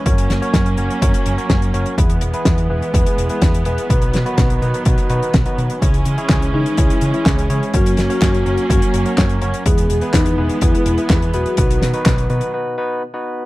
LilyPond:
<<
  \new Staff \with { instrumentName = "Soft synth lead" } { \time 4/4 \key fis \mixolydian \tempo 4 = 125 r1 | r1 | r1 | r4. dis'8 e'4 gis'4 |
fis'8 fis'2. r8 | gis'4 dis'4 e'4. fis'8~ | fis'8 r2. r8 | }
  \new Staff \with { instrumentName = "Tine electric piano" } { \time 4/4 \key fis \mixolydian <cis' fis' ais' cis''>8. <cis' fis' ais' cis''>8. <cis' fis' ais' cis''>8 <cis' fis' ais' cis''>8. <cis' fis' ais' cis''>8. <cis' fis' ais' cis''>8 | <b e' gis' b'>8. <b e' gis' b'>8. <b e' gis' b'>8 <b e' gis' b'>8. <b e' gis' b'>8. <b e' gis' b'>8 | <b dis' fis' b'>8. <b dis' fis' b'>8. <b dis' fis' b'>8 <b dis' fis' b'>8 <b dis' fis' b'>8 r16 <b dis' fis' b'>8. | <cis' e' gis' cis''>8. <cis' e' gis' cis''>8. <cis' e' gis' cis''>8 <cis' e' gis' cis''>8. <cis' e' gis' cis''>8. <cis' e' gis' cis''>8 |
<cis' fis' ais' cis''>8. <cis' fis' ais' cis''>8. <cis' fis' ais' cis''>8 <cis' fis' ais' cis''>8. <cis' fis' ais' cis''>8. <cis' fis' ais' cis''>8 | <b e' gis' b'>8. <b e' gis' b'>8. <b e' gis' b'>8 <b e' gis' b'>8. <b e' gis' b'>8. <b e' gis' b'>8 | <b dis' fis' b'>8. <b dis' fis' b'>8. <b dis' fis' b'>8 <b dis' fis' b'>8 <b dis' fis' b'>8 r16 <b dis' fis' b'>8. | }
  \new Staff \with { instrumentName = "String section" } { \clef bass \time 4/4 \key fis \mixolydian << { cis'1 | b1~ | b1 | cis'1 |
cis'1 | b1~ | b2 r2 | } \\ { <fis ais>1 | <e gis>1 | <dis fis>1 | <e gis>1 |
<fis ais>1 | <e gis>1 | <dis fis>2 r2 | } >> }
  \new Staff \with { instrumentName = "Picked electric bass" } { \clef bass \time 4/4 \key fis \mixolydian fis,8 fis,,8 fis,8 fis,,8 fis,8 fis,,8 fis,8 fis,,8 | e,8 e,,8 e,8 e,,8 e,8 e,,8 e,8 e,,8 | b,,8 b,8 b,,8 b,8 b,,8 b,8 b,,8 b,8 | cis,8 cis8 cis,8 cis8 cis,8 cis8 cis,8 cis8 |
fis,8 fis,,8 fis,8 fis,,8 fis,8 fis,,8 fis,8 fis,,8 | e,8 e,,8 e,8 e,,8 e,8 e,,8 e,8 e,,8 | b,,8 b,8 b,,8 b,8 r2 | }
  \new DrumStaff \with { instrumentName = "Drums" } \drummode { \time 4/4 <hh bd>16 hh16 <hh sn>16 hh16 <hh bd sn>16 hh16 hh16 hh16 <hh bd>16 hh16 hh16 hh16 <hh bd sn>16 hh16 hh16 hh16 | <hh bd>16 hh16 hh16 hh16 <hh bd sn>16 hh8 hh16 <hh bd>16 hh16 hh16 hh16 <hh bd sn>16 hh16 hh16 hh16 | <hh bd>16 hh16 <hh sn>16 hh16 <hh bd sn>16 hh16 hh16 hh16 <hh bd>16 hh16 hh16 hh16 <hh bd sn>16 hh16 hh16 hh16 | <hh bd>16 hh16 hh16 hh16 <hc hh bd sn>16 hh8 hh16 <hh bd>16 hh16 hh16 hh16 <hc hh bd sn>16 hh16 hh16 hh16 |
<hh bd>16 hh16 <hh sn>16 hh16 <hc hh bd sn>16 hh16 hh16 hh16 <hh bd>16 hh16 hh16 hh16 <hc hh bd sn>16 hh16 hh16 hh16 | <hh bd>16 hh16 hh16 hh16 <hc hh bd sn>16 hh8 hh16 <hh bd>16 hh16 hh16 hh16 <hc hh bd sn>16 hh16 hh16 hh16 | <hh bd>16 hh16 <hh sn>16 hh16 <hc hh bd sn>16 hh16 hh16 hh16 r4 r4 | }
>>